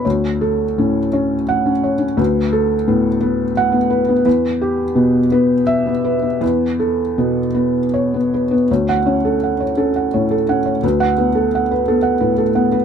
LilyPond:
<<
  \new Staff \with { instrumentName = "Felt piano" } { \time 6/8 \key d \major \tempo 4. = 56 << { r2 fis''8. r16 | r2 fis''8. r16 | r2 e''8. r16 | r2 cis''8. r16 |
r16 fis''8 r2 r16 | r16 fis''8 r2 r16 | } \\ { cis''8 a'8 a,8 cis''8. r16 cis''8 | b'8 a'8 a,8 b'8. r16 b'8 | b'8 g'8 b,8 b'8. r16 b'8 | b'8 a'8 b,8 b'8. r16 b'8 |
cis''8 cis''16 a'16 fis''16 cis''16 a'16 fis''16 cis''16 a'16 fis''16 cis''16 | b'8 b'16 a'16 fis''16 b'16 a'16 fis''16 b'16 a'16 fis''16 b'16 | } >> }
  \new Staff \with { instrumentName = "Felt piano" } { \time 6/8 \key d \major d,4 cis'8 cis'8 r16 cis'8 cis'16 | d,4 b8 b8 r16 b8 b16 | e,4 b8 b8 r16 b8 b16 | e,4 b8 b8 r16 b8 b16 |
d,8 cis'8. r16 cis'8 a,8 cis'8 | d,8 b8. r16 b8 a,8 b8 | }
>>